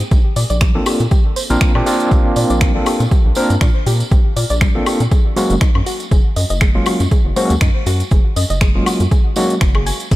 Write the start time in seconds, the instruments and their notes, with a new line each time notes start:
0.00 closed hi-hat
0.11 analog synth bass A#1, synth arpeggio sound G4, kick, closed hi-hat, tambourine
0.36 analog synth bass A#2, synth arpeggio sound D5, open hi-hat, tambourine
0.50 analog synth bass A#1, synth arpeggio sound D5, closed hi-hat, tambourine
0.61 synth arpeggio sound G3, finger snap, kick, closed hi-hat, tambourine
0.75 tine electric piano A#3 C4 D4 F4 A4
0.86 synth arpeggio sound G4, open hi-hat, tambourine, high woodblock
0.99 analog synth bass A#2, closed hi-hat, tambourine
1.11 synth arpeggio sound G4, kick, closed hi-hat, tambourine
1.36 synth arpeggio sound C5, open hi-hat, tambourine
1.50 analog synth bass A#1, tine electric piano A#3 C4 D4 F4 A#4, closed hi-hat, tambourine
1.61 synth arpeggio sound D4, finger snap, kick, closed hi-hat, tambourine
1.75 analog synth bass A#2, tine electric piano A#3 C4 D4 F4 G4, high woodblock
1.86 tine electric piano A#3 C4 D4 F4 A#4, synth arpeggio sound G4, open hi-hat, tambourine
2.00 closed hi-hat, tambourine
2.11 analog synth bass A#1, synth arpeggio sound G4, kick, closed hi-hat, tambourine
2.36 analog synth bass A#2, synth arpeggio sound D5, open hi-hat, tambourine
2.50 analog synth bass A#1, synth arpeggio sound D5, closed hi-hat, tambourine
2.61 synth arpeggio sound G3, finger snap, kick, closed hi-hat, tambourine
2.75 tine electric piano A#3 C4 D4 F4 A4
2.86 synth arpeggio sound G4, open hi-hat, tambourine, high woodblock
3.00 analog synth bass A#2, closed hi-hat, tambourine
3.11 synth arpeggio sound G4, kick, closed hi-hat, tambourine
3.25 analog synth bass A#1
3.35 tine electric piano A#3 C4 D4 F4 A#4, synth arpeggio sound C5, open hi-hat, tambourine
3.50 analog synth bass G2, closed hi-hat, tambourine
3.61 analog synth bass A#2, synth arpeggio sound D4, finger snap, kick, closed hi-hat, tambourine
3.86 analog synth bass A#2, synth arpeggio sound G4, open hi-hat, tambourine
4.00 closed hi-hat, tambourine
4.11 analog synth bass A#1, synth arpeggio sound G4, kick, closed hi-hat, tambourine
4.36 analog synth bass A#2, synth arpeggio sound D5, open hi-hat, tambourine
4.50 analog synth bass A#1, synth arpeggio sound D5, closed hi-hat, tambourine
4.61 synth arpeggio sound G3, finger snap, kick, closed hi-hat
4.75 tine electric piano A#3 C4 D4 F4 A4
4.86 synth arpeggio sound G4, open hi-hat, tambourine, high woodblock
5.00 analog synth bass A#2, closed hi-hat, tambourine
5.11 synth arpeggio sound G#4, kick, closed hi-hat, tambourine
5.36 tine electric piano F#3 G#3 A#3 C#4 F#4, synth arpeggio sound C5, open hi-hat, tambourine
5.50 analog synth bass F#1, closed hi-hat, tambourine
5.61 synth arpeggio sound D#4, finger snap, kick, closed hi-hat, tambourine
5.75 analog synth bass F#2, high woodblock
5.86 synth arpeggio sound F#4, open hi-hat, tambourine
6.00 closed hi-hat, tambourine
6.11 analog synth bass F#1, synth arpeggio sound G#4, kick, closed hi-hat, tambourine
6.36 analog synth bass F#2, synth arpeggio sound D#5, open hi-hat, tambourine
6.50 analog synth bass F#1, synth arpeggio sound D#5, closed hi-hat, tambourine
6.61 synth arpeggio sound G#3, finger snap, kick, closed hi-hat
6.75 tine electric piano F#3 G#3 A#3 C#4 F4
6.86 synth arpeggio sound F#4, open hi-hat, tambourine, high woodblock
7.00 analog synth bass F#2, closed hi-hat, tambourine
7.11 synth arpeggio sound G#4, kick, closed hi-hat, tambourine
7.25 analog synth bass F#1
7.36 tine electric piano F#3 G#3 A#3 C#4 F#4, synth arpeggio sound C5, open hi-hat, tambourine
7.50 analog synth bass D#2, closed hi-hat, tambourine
7.61 analog synth bass F#2, synth arpeggio sound D#4, finger snap, kick, closed hi-hat, tambourine
7.86 analog synth bass F#2, synth arpeggio sound F#4, open hi-hat, tambourine
8.00 closed hi-hat, tambourine
8.11 analog synth bass F#1, synth arpeggio sound G#4, kick, closed hi-hat, tambourine
8.36 analog synth bass F#2, synth arpeggio sound D#5, open hi-hat, tambourine
8.50 analog synth bass F#1, synth arpeggio sound D#5, closed hi-hat, tambourine
8.61 synth arpeggio sound G#3, finger snap, kick, closed hi-hat
8.75 tine electric piano F#3 G#3 A#3 C#4 F4
8.86 synth arpeggio sound F#4, open hi-hat, tambourine, high woodblock
9.00 analog synth bass F#2, closed hi-hat, tambourine
9.11 synth arpeggio sound G#4, kick, closed hi-hat, tambourine
9.36 tine electric piano F#3 G#3 A#3 C#4 F#4, synth arpeggio sound D#4, open hi-hat, tambourine
9.50 closed hi-hat, tambourine
9.61 analog synth bass F#1, synth arpeggio sound F#4, finger snap, kick, closed hi-hat, tambourine
9.75 synth arpeggio sound G#4, finger snap, high woodblock
9.86 synth arpeggio sound G#5, open hi-hat, tambourine
10.00 closed hi-hat, tambourine
10.11 analog synth bass G#1, synth arpeggio sound G#4, kick, closed hi-hat, crash, tambourine